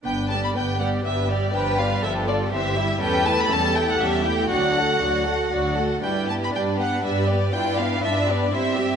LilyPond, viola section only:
\new Staff \with { instrumentName = "Viola section" } { \time 3/4 \key g \major \tempo 4 = 120 <b d'>8 <g b>8 <b d'>8 <g b>8 <b d'>8 <g b>8 | <f d'>8 <g b>8 <f d'>8 <g b>8 <e c'>8 <g e'>8 | <g cis'>8 <a e'>8 <g cis'>8 <a e'>8 <g cis'>8 <a e'>8 | <fis d'>8 <a fis'>8 <fis d'>8 <a fis'>8 <fis d'>8 <a fis'>8 |
<g d'>8 b8 <g d'>8 b8 <g d'>8 b8 | <d' f'>8 <b d'>8 <d' f'>8 <b d'>8 <g e'>8 <c' g'>8 | }